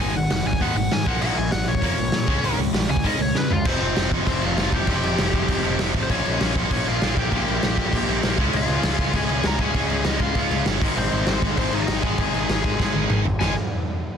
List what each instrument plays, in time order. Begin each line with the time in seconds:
0.00 picked electric bass G#1, distorted electric guitar G#2 D#3 G#3, lead electric guitar G#5
0.15 picked electric bass G#1, distorted electric guitar G#2 D#3, lead electric guitar F#5
0.30 picked electric bass F1, distorted electric guitar G#2 D#3, lead electric guitar F#5, snare, open hi-hat
0.45 picked electric bass G#1, distorted electric guitar G#2 D#3, lead electric guitar G#5
0.53 kick
0.61 picked electric bass D#2, distorted electric guitar G#2 D#3 G#3, lead electric guitar F#5, kick, open hi-hat
0.76 picked electric bass G#1, distorted electric guitar G#2 D#3, lead electric guitar F#5
0.91 distorted electric guitar G#2 D#3, picked electric bass G#2, lead electric guitar G#5, snare, open hi-hat
1.06 picked electric bass A#1, distorted electric guitar A#2 F3 A#3, lead electric guitar F#5, kick
1.22 picked electric bass A#1, distorted electric guitar A#2 F3 A#3, lead electric guitar F#5, crash
1.38 picked electric bass A#1, distorted electric guitar A#2 F3, lead electric guitar G#5
1.52 picked electric bass G#1, distorted electric guitar A#2 F3, lead electric guitar F#5, snare, open hi-hat
1.68 picked electric bass A#1, distorted electric guitar A#2 F3, lead electric guitar C#5
1.75 kick
1.82 picked electric bass F2, distorted electric guitar A#2 F3 A#3, kick, open hi-hat
1.99 picked electric bass A#1, distorted electric guitar A#2 F3
2.12 picked electric bass A#2, distorted electric guitar A#2 F3, snare, open hi-hat
2.28 picked electric bass C#2, distorted electric guitar C#3 G#3 C#4, kick
2.43 picked electric bass C#2, distorted electric guitar C#3 G#3 C#4, open hi-hat
2.58 picked electric bass C#2, distorted electric guitar C#3 G#3
2.73 picked electric bass A#1, distorted electric guitar C#3 G#3, snare, open hi-hat
2.89 picked electric bass C#2, distorted electric guitar C#3 G#3, lead electric guitar G#5
2.97 kick
3.04 picked electric bass G#2, distorted electric guitar C#3 G#3 C#4, lead electric guitar D#5, kick, open hi-hat
3.18 picked electric bass C#2, distorted electric guitar C#3 G#3, lead electric guitar C#5
3.35 picked electric bass C#3, distorted electric guitar C#3 G#3, lead electric guitar B4, snare
3.50 picked electric bass C#2, distorted electric guitar C#3 G#3, lead electric guitar F4, floor tom
3.65 picked electric bass F1, distorted electric guitar F2 C3 F3, lead electric guitar C4 C5, kick, crash
3.81 picked electric bass F1, crash
3.96 picked electric bass F1, snare, crash
4.11 picked electric bass F1, kick, crash
4.27 picked electric bass F1, lead electric guitar C4 C5, kick, crash
4.42 picked electric bass F1, distorted electric guitar F2 C3 F3, lead electric guitar F5, crash
4.46 lead electric guitar F4
4.57 picked electric bass F1, distorted electric guitar F2 C3, snare, crash
4.61 distorted electric guitar F3
4.72 picked electric bass F1, lead electric guitar G4 G5, kick, crash
4.87 picked electric bass F1, distorted electric guitar F2 C3 F3, kick, crash
5.03 picked electric bass F1, crash
5.18 picked electric bass F1, snare, crash
5.33 picked electric bass F1, kick, crash
5.48 picked electric bass F1, kick, crash
5.63 picked electric bass F1, distorted electric guitar F2 C3 F3, crash
5.79 picked electric bass F1, distorted electric guitar F2 C3 F3, snare, crash
5.94 picked electric bass A1, kick, crash
6.03 lead electric guitar C5
6.09 picked electric bass A#1, distorted electric guitar A#2 F3 A#3, lead electric guitar C#4 C#5, kick, crash
6.25 picked electric bass A#1, crash
6.41 picked electric bass A#1, snare, crash
6.56 picked electric bass A#1, kick, crash
6.71 picked electric bass A#1, lead electric guitar C#4 C#5, kick, crash
6.85 picked electric bass A#1, distorted electric guitar A#2 F3 A#3, lead electric guitar F4 F5, crash
7.01 picked electric bass A#1, distorted electric guitar A#2 F3 A#3, snare, crash
7.17 picked electric bass A#1, lead electric guitar G4 G5, kick, crash
7.31 picked electric bass A#1, distorted electric guitar A#2 F3 A#3, kick, crash
7.48 picked electric bass A#1, crash
7.63 picked electric bass A#1, snare, crash
7.77 picked electric bass A#1, kick, crash
7.93 picked electric bass A#1, kick, crash
8.07 picked electric bass A#1, distorted electric guitar A#2 F3 A#3, crash
8.22 picked electric bass A#1, distorted electric guitar A#2 F3 A#3, snare, crash
8.37 picked electric bass C#2, distorted electric guitar C#3 G#3 C#4, kick, crash
8.53 picked electric bass C#2, lead electric guitar F4 F5, crash
8.68 picked electric bass C#2, crash
8.83 picked electric bass C#2, snare, crash
8.98 picked electric bass C#2, kick, crash
9.12 picked electric bass C#2, distorted electric guitar C#3 G#3 C#4, lead electric guitar G#4 G#5, kick, crash
9.28 picked electric bass C#2, distorted electric guitar C#3 G#3 C#4, crash
9.43 picked electric bass C#2, lead electric guitar A#4 A#5, snare, crash
9.59 picked electric bass C#2, distorted electric guitar C#3 G#3 C#4, lead electric guitar G#4 G#5, kick, crash
9.74 picked electric bass C#2, kick, crash
9.89 picked electric bass C#2, crash
10.04 picked electric bass C#2, lead electric guitar D#4 D#5, snare, crash
10.20 picked electric bass C#2, lead electric guitar F4 F5, kick, crash
10.35 picked electric bass C#2, distorted electric guitar C#3 G#3, kick, crash
10.39 distorted electric guitar C#4
10.51 picked electric bass C#2, distorted electric guitar C#3 G#3 C#4, crash
10.66 picked electric bass G1, snare, crash
10.80 picked electric bass G#1, distorted electric guitar G#2 D#3 G#3, kick, crash
10.97 picked electric bass G#1, lead electric guitar C4 C5, crash
11.12 picked electric bass G#1, crash
11.27 picked electric bass G#1, snare, crash
11.42 picked electric bass G#1, kick, crash
11.57 picked electric bass G#1, distorted electric guitar G#2 D#3 G#3, lead electric guitar C4 C5, kick, crash
11.72 picked electric bass G#1, distorted electric guitar G#2 D#3 G#3, lead electric guitar D#4 D#5, crash
11.88 picked electric bass G#1, snare, crash
12.02 picked electric bass G#1, distorted electric guitar G#2 D#3 G#3, lead electric guitar G#4 G#5, kick, crash
12.18 picked electric bass G#1, kick, crash
12.34 picked electric bass G#1, crash
12.49 picked electric bass G#1, snare, crash
12.64 picked electric bass G#1, kick, crash
12.79 picked electric bass G#1, distorted electric guitar G#2 D#3 G#3, kick, snare
12.94 picked electric bass G#1, distorted electric guitar G#2 D#3 G#3, high tom
13.10 picked electric bass G#1, mid tom
13.25 picked electric bass G#1, floor tom
13.39 picked electric bass G#1, distorted electric guitar G#2 D#3 G#3, lead electric guitar G#5, snare, floor tom